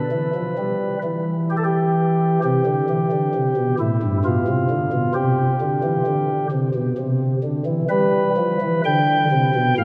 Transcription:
0.00 0.99 B4 medium
0.12 0.31 E3 medium
0.35 0.54 F3 medium
0.58 0.96 G3 medium
1.04 2.39 E3 medium
1.50 1.56 G4 medium
1.57 1.63 A4 medium
1.64 2.40 G4 medium
2.44 2.63 C3 medium
2.44 3.75 G4 loud
2.66 2.85 D3 medium
2.89 3.08 E3 medium
3.12 3.31 D3 medium
3.34 3.53 C3 medium
3.56 3.75 B2 soft
3.79 3.98 A2 medium
3.79 4.17 E4 medium
4.02 4.21 G2 medium
4.25 4.43 B2 medium
4.25 5.12 F4 medium
4.48 4.66 C3 medium
4.70 4.89 D3 medium
4.92 5.12 B2 medium
5.14 5.53 C3 medium
5.14 6.47 G4 medium
5.61 5.80 D3 medium
5.83 6.03 E3 medium
6.06 6.45 D3 medium
6.52 6.71 C3 medium
6.74 6.93 B2 medium
6.98 7.36 C3 medium
7.43 7.62 D3 medium
7.66 7.85 E3 medium
7.89 8.29 G3 medium
7.89 8.81 B4 loud
8.37 8.57 F3 medium
8.61 8.81 E3 medium
8.85 9.24 D3 medium
8.85 9.74 G5 loud
9.32 9.51 C3 medium
9.55 9.74 B2 medium
9.77 9.84 A2 medium
9.77 9.84 F5 loud

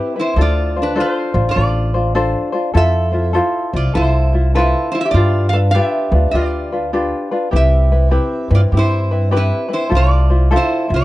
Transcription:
0.00 0.16 C4 medium
0.00 0.16 E4 medium
0.00 0.16 G4 medium
0.00 0.15 B4 medium
0.16 0.37 C4 soft
0.16 0.38 E4 soft
0.16 0.37 E4 medium
0.16 0.37 B4 soft
0.21 0.40 C5 medium
0.36 1.00 D2 medium
0.36 0.75 D4 medium
0.36 0.75 F4 medium
0.36 0.75 A4 medium
0.36 0.75 C5 medium
0.41 0.76 F4 medium
0.41 0.76 D5 medium
0.76 0.94 D4 soft
0.76 0.95 F4 soft
0.76 0.96 C5 soft
0.82 0.98 D4 soft
0.82 1.00 B4 medium
0.96 1.34 D4 medium
0.96 1.33 F4 medium
0.96 1.34 A4 medium
0.96 1.33 C5 medium
1.00 1.44 F4 medium
1.00 1.12 B4 medium
1.12 1.49 C5 medium
1.34 1.48 A1 medium
1.34 1.54 D4 soft
1.34 1.56 F4 soft
1.34 1.56 C5 soft
1.49 2.51 F4 medium
1.49 2.52 D5 medium
1.55 2.33 A1 medium
1.55 1.94 D4 medium
1.55 1.94 F4 medium
1.55 1.93 A4 soft
1.55 1.93 C5 medium
1.94 2.14 D4 soft
1.94 2.14 F4 soft
1.94 2.15 C5 medium
2.15 2.53 D4 loud
2.15 2.52 F4 medium
2.15 2.53 A4 medium
2.15 2.51 C5 loud
2.52 2.74 D4 soft
2.52 2.74 F4 soft
2.52 2.73 C5 medium
2.74 3.38 F2 medium
2.74 3.13 E4 medium
2.74 3.12 F4 medium
2.74 3.12 A4 medium
2.74 3.11 C5 medium
2.74 3.32 E5 loud
2.78 3.32 A4 medium
3.12 3.32 E4 medium
3.12 3.34 F4 soft
3.12 3.33 C5 medium
3.33 3.72 E4 medium
3.33 3.73 F4 medium
3.33 3.72 A4 medium
3.33 3.72 C5 medium
3.73 3.87 C2 medium
3.73 3.93 E4 soft
3.73 3.94 F4 soft
3.73 3.95 F4 medium
3.73 3.94 C5 medium
3.73 3.95 D5 medium
3.94 4.72 C2 medium
3.94 4.33 E4 medium
3.94 4.51 E4 medium
3.94 4.33 F4 medium
3.94 4.32 A4 medium
3.94 4.55 C5 medium
3.94 4.31 C5 medium
4.32 4.54 E4 soft
4.32 4.55 F4 soft
4.32 4.54 C5 soft
4.55 4.93 E4 medium
4.55 4.92 E4 medium
4.55 4.93 F4 medium
4.55 4.92 A4 medium
4.55 4.91 B4 medium
4.55 4.92 C5 loud
4.92 5.03 E4 medium
4.92 5.15 F4 soft
4.92 5.00 C5 medium
4.92 5.14 C5 soft
4.96 5.15 E4 soft
5.01 5.10 E5 medium
5.05 5.14 G4 medium
5.11 5.77 G2 medium
5.11 5.49 F4 medium
5.11 5.49 D5 medium
5.16 5.53 D4 medium
5.16 5.53 F4 medium
5.16 5.53 G4 medium
5.16 5.52 B4 medium
5.49 5.59 A4 medium
5.49 5.55 F5 loud
5.54 5.73 D4 soft
5.54 5.74 F4 soft
5.54 5.74 B4 soft
5.71 6.12 D4 medium
5.71 6.12 G4 medium
5.71 6.30 G4 medium
5.71 5.82 F5 loud
5.75 6.12 F4 medium
5.75 6.11 B4 loud
5.82 6.31 E5 loud
6.12 6.25 D2 medium
6.12 6.33 D4 soft
6.12 6.33 F4 soft
6.12 6.33 B4 medium
6.31 7.11 D2 medium
6.31 6.71 D4 medium
6.31 6.72 F4 medium
6.31 7.28 F4 medium
6.31 6.71 G4 medium
6.31 6.71 B4 medium
6.31 7.26 D5 medium
6.72 6.92 D4 soft
6.72 6.93 F4 soft
6.72 6.93 B4 soft
6.93 7.31 D4 medium
6.93 7.31 F4 medium
6.93 7.31 G4 medium
6.93 7.30 B4 medium
7.31 7.51 D4 soft
7.31 7.52 F4 soft
7.31 7.51 B4 soft
7.51 8.16 C2 medium
7.51 7.90 C4 medium
7.51 7.90 E4 medium
7.51 7.90 G4 medium
7.51 7.91 B4 medium
7.56 8.48 G4 medium
7.56 8.54 E5 medium
7.92 8.10 C4 soft
7.92 8.11 E4 medium
7.92 8.10 B4 medium
8.11 8.50 C4 medium
8.11 8.50 E4 medium
8.11 8.50 G4 medium
8.11 8.49 B4 medium
8.50 8.64 G2 loud
8.50 8.72 C4 soft
8.50 8.72 E4 soft
8.50 8.72 B4 medium
8.55 8.61 F4 medium
8.55 8.60 D5 medium
8.72 9.50 G2 medium
8.72 9.11 C4 medium
8.72 9.11 E4 medium
8.72 9.10 G4 medium
8.72 9.10 B4 medium
8.77 9.30 E4 medium
8.77 9.37 C5 medium
9.11 9.30 C4 soft
9.11 9.31 E4 soft
9.11 9.31 B4 soft
9.31 9.69 C4 medium
9.31 9.68 E4 medium
9.31 9.69 G4 medium
9.31 9.67 B4 medium
9.36 9.70 E4 medium
9.36 9.73 B4 medium
9.69 9.90 C4 soft
9.69 9.89 E4 soft
9.69 9.89 B4 soft
9.73 9.92 E4 medium
9.73 9.92 C5 medium
9.89 10.55 C2 medium
9.89 10.29 E4 medium
9.89 10.29 F4 medium
9.89 10.28 A4 medium
9.89 10.28 C5 medium
9.95 10.49 F4 medium
9.95 10.55 D5 medium
10.30 10.50 E4 soft
10.30 10.50 F4 soft
10.30 10.51 C5 medium
10.51 10.88 E4 medium
10.51 10.88 F4 medium
10.51 10.89 A4 medium
10.51 10.87 C5 medium
10.56 10.89 E4 medium
10.56 10.93 C5 medium
10.88 11.04 C2 medium
10.88 11.04 E4 soft
10.88 11.04 F4 soft
10.88 11.04 C5 soft
10.94 11.04 F4 medium
10.94 11.04 D5 medium

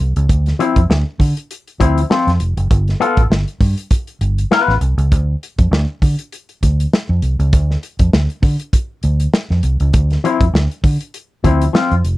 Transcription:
0.00 0.12 C2 medium
0.16 0.26 C#2 medium
0.16 closed hi-hat medium
0.29 0.52 D2 loud
0.29 kick loud
0.29 closed hi-hat medium
0.46 snare soft
0.46 closed hi-hat soft
0.59 0.78 F3 medium
0.59 0.79 C4 medium
0.59 0.79 E4 medium
0.59 closed hi-hat medium
0.76 0.86 F2 medium
0.76 kick loud
0.76 closed hi-hat soft
0.90 1.02 D2 loud
0.90 snare loud
1.20 1.32 D3 loud
1.20 kick medium
1.20 open hi-hat medium
1.37 closed hi-hat medium
1.51 closed hi-hat medium
1.68 closed hi-hat soft
1.80 2.03 D2 medium
1.80 1.99 F3 medium
1.80 2.00 C4 medium
1.80 2.00 E4 loud
1.80 kick medium
1.80 closed hi-hat medium
1.98 closed hi-hat medium
2.10 2.29 F3 medium
2.10 2.30 C4 loud
2.10 2.30 F4 loud
2.10 snare loud
2.27 2.37 F2 medium
2.27 snare soft
2.27 closed hi-hat soft
2.40 2.53 F1 medium
2.40 closed hi-hat medium
2.57 2.67 F#1 medium
2.57 closed hi-hat soft
2.71 2.93 G1 loud
2.71 kick loud
2.71 closed hi-hat medium
2.88 snare soft
2.88 closed hi-hat soft
3.00 3.20 B3 medium
3.00 3.20 F4 medium
3.00 3.21 A4 medium
3.00 closed hi-hat medium
3.17 3.27 A1 medium
3.17 kick loud
3.17 closed hi-hat medium
3.30 3.43 G1 medium
3.30 snare loud
3.48 closed hi-hat soft
3.61 3.73 G2 medium
3.61 kick loud
3.61 open hi-hat medium
3.78 closed hi-hat medium
3.91 kick loud
3.91 closed hi-hat medium
4.07 closed hi-hat soft
4.21 4.44 G1 medium
4.21 closed hi-hat medium
4.38 closed hi-hat medium
4.51 4.73 B3 medium
4.51 4.73 F4 medium
4.51 4.73 B4 medium
4.51 snare loud
4.68 4.78 A1 medium
4.68 snare soft
4.81 4.94 C2 medium
4.81 closed hi-hat medium
4.98 5.12 C#2 medium
4.98 closed hi-hat soft
5.12 5.34 D2 medium
5.12 kick loud
5.12 closed hi-hat medium
5.43 closed hi-hat medium
5.58 5.68 F2 medium
5.58 kick loud
5.58 closed hi-hat medium
5.71 5.84 D2 loud
5.71 snare loud
6.02 6.15 D3 loud
6.02 kick loud
6.02 open hi-hat medium
6.19 closed hi-hat medium
6.32 closed hi-hat medium
6.49 closed hi-hat soft
6.63 6.85 D2 medium
6.63 kick medium
6.63 closed hi-hat medium
6.80 closed hi-hat medium
6.93 snare loud
7.09 7.19 F2 medium
7.22 7.35 C2 medium
7.22 closed hi-hat medium
7.39 7.53 C#2 medium
7.39 closed hi-hat soft
7.53 7.75 D2 loud
7.53 kick loud
7.53 closed hi-hat medium
7.71 snare soft
7.83 closed hi-hat medium
7.99 8.09 F2 medium
7.99 kick medium
7.99 closed hi-hat medium
8.13 8.26 D2 loud
8.13 snare loud
8.30 closed hi-hat soft
8.42 8.55 D3 loud
8.42 kick loud
8.42 open hi-hat medium
8.60 closed hi-hat medium
8.73 kick loud
8.73 closed hi-hat medium
9.03 9.26 D2 medium
9.03 closed hi-hat medium
9.20 closed hi-hat medium
9.34 snare loud
9.50 9.60 F2 medium
9.50 snare soft
9.63 9.76 C2 medium
9.63 closed hi-hat medium
9.80 9.90 C#2 medium
9.80 closed hi-hat medium
9.93 10.16 D2 loud
9.93 kick loud
9.93 closed hi-hat medium
10.10 snare soft
10.10 closed hi-hat soft
10.24 10.43 F3 loud
10.24 10.43 C4 medium
10.24 10.44 E4 loud
10.24 closed hi-hat medium
10.40 10.50 F2 medium
10.40 kick loud
10.40 closed hi-hat soft
10.53 10.66 D2 loud
10.53 snare loud
10.71 closed hi-hat soft
10.84 10.96 D3 loud
10.84 kick loud
10.84 open hi-hat medium
11.01 closed hi-hat medium
11.14 closed hi-hat medium
11.44 11.67 D2 medium
11.44 11.63 F3 medium
11.44 11.64 C4 medium
11.44 11.64 E4 medium
11.44 kick medium
11.44 closed hi-hat medium
11.62 closed hi-hat medium
11.73 11.93 F3 medium
11.73 11.93 C4 medium
11.73 11.94 F4 medium
11.73 snare loud
11.91 12.01 F2 loud
11.91 closed hi-hat soft
12.04 12.17 F1 medium
12.04 closed hi-hat medium

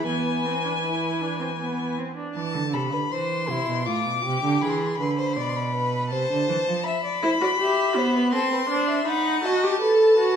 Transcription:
0.07 1.94 E3 medium
0.07 0.47 B3 medium
0.07 1.94 B4 medium
0.07 1.94 G#5 medium
0.45 0.64 C4 medium
0.65 0.73 D4 medium
0.84 1.23 E4 medium
1.21 1.40 D4 medium
1.41 1.48 C4 medium
1.60 2.00 B3 medium
1.98 2.16 C4 medium
2.17 2.35 D4 medium
2.36 2.56 E3 medium
2.36 2.75 A5 medium
2.55 2.75 D3 medium
2.74 2.94 C3 medium
2.74 2.82 A4 medium
2.74 3.14 B5 medium
2.92 3.11 D3 medium
2.92 3.00 B4 medium
3.10 3.50 E3 medium
3.10 3.51 C5 medium
3.10 3.88 C6 medium
3.48 3.67 C3 medium
3.48 3.86 E4 medium
3.67 3.89 B2 medium
3.86 4.07 A2 medium
3.86 4.23 F4 medium
3.86 4.63 D6 medium
4.06 4.24 B2 medium
4.24 4.42 C3 medium
4.24 4.64 G4 medium
4.43 4.61 D3 medium
4.62 4.98 E3 medium
4.62 4.99 G#4 medium
4.62 4.71 B5 medium
4.70 4.80 C6 medium
4.78 4.88 B5 medium
4.87 4.97 C6 medium
4.95 5.38 D3 medium
4.95 5.04 B5 medium
5.00 5.17 B4 medium
5.00 5.12 C6 medium
5.11 5.20 B5 medium
5.18 5.36 C5 medium
5.18 5.28 C6 medium
5.26 5.34 B5 medium
5.33 6.13 B2 medium
5.33 5.43 C6 medium
5.38 5.74 D5 medium
5.38 5.51 B5 medium
5.49 5.58 C6 medium
5.56 6.09 B5 medium
5.76 6.11 B4 medium
6.10 6.30 C3 medium
6.10 6.85 C5 loud
6.10 6.85 A5 medium
6.31 6.48 D3 medium
6.49 6.56 E3 medium
6.67 6.85 F3 medium
6.84 7.04 E5 medium
6.84 8.32 B5 loud
7.05 7.22 D5 medium
7.23 7.30 E4 loud
7.23 7.31 C5 medium
7.41 7.48 F#4 medium
7.41 7.49 D5 medium
7.59 7.97 G4 loud
7.59 7.99 E5 medium
7.96 8.34 B3 loud
7.96 8.17 C5 medium
8.16 8.33 B4 medium
8.32 8.69 C4 loud
8.32 8.52 A4 medium
8.32 9.05 C6 medium
8.52 8.60 B4 medium
8.70 9.06 D4 loud
8.70 8.87 C5 medium
8.88 9.10 E5 medium
9.07 9.43 D#4 loud
9.07 9.47 F#5 medium
9.07 9.43 B5 medium
9.43 9.65 F#4 loud
9.43 9.81 D#5 medium
9.43 10.36 A5 medium
9.64 9.81 G4 loud
9.81 10.18 A4 loud
9.81 10.36 B4 medium
10.19 10.36 F#4 loud

